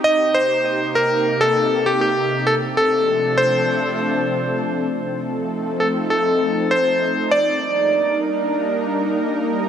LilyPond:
<<
  \new Staff \with { instrumentName = "Electric grand piano" } { \time 4/4 \key f \mixolydian \tempo 4 = 99 ees''8 c''4 bes'8. a'8. g'16 g'8. | a'8 a'4 c''2 r8 | r4. a'8 a'4 c''4 | d''4. r2 r8 | }
  \new Staff \with { instrumentName = "Analog synth pad" } { \time 4/4 \key f \mixolydian << { <c bes g'>1 | <f a c' a'>1 | <f a c' a'>1 | <g bes d' bes'>1 | } \\ { ees'1 | d'1 | ees'1~ | ees'1 | } >> }
>>